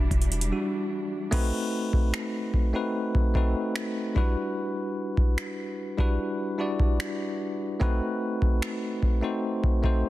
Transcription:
Already playing: E1 E3 G3 D4 E4 F#4 E5
0.11 E1, kick, closed hi-hat
0.22 closed hi-hat
0.32 closed hi-hat
0.41 closed hi-hat
0.52 G3 D4 F#4
1.31 A3 C4 D#4 F#4 B4, kick, crash
1.93 kick
2.14 finger snap
2.54 kick
2.73 A3 C4 D#4 F#4 B4
3.15 kick
3.34 A3 C4 D#4 F#4 B4, kick
3.76 finger snap
4.15 G3 D4 E4 F#4 B4, kick
5.17 kick
5.38 finger snap
5.97 G3 D4 E4 F#4 B4, kick
6.58 G3 D4 E4 F#4 D5
6.80 kick
7.00 finger snap
7.80 A3 C4 D#4 F#4 B4, kick
8.42 kick
8.62 finger snap
9.03 kick
9.21 A3 C4 D#4 F#4 C5
9.64 kick
9.83 A3 C4 D#4 F#4 C5, kick

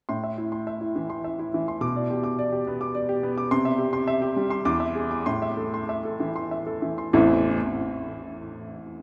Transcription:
0.09 A2 C6
0.24 E5
0.38 E4
0.52 C6
0.67 E5
0.81 E4
0.96 E3
1.10 C6
1.24 E5
1.39 E4
1.54 E3
1.68 C6
1.81 B2 D6
1.96 D5
2.11 G4
2.24 D6
2.39 D5
2.52 G4
2.67 B3
2.81 D6
2.95 D5
3.09 G4
3.23 B3
3.38 D6
3.51 C3 C6
3.65 E5
3.78 G4
3.93 C6
4.08 E5
4.22 G4
4.36 G3
4.50 C6
4.65 E2 D6
4.80 E5
4.95 G#4
5.11 D6
5.26 A2 C6
5.42 E5
5.57 A4
5.74 C6
5.89 E5
6.05 A4
6.20 E3
6.36 C6
6.51 E5
6.67 A4
6.82 E3
6.98 C6
7.13 A1 E2 E3 A3 C4 E4

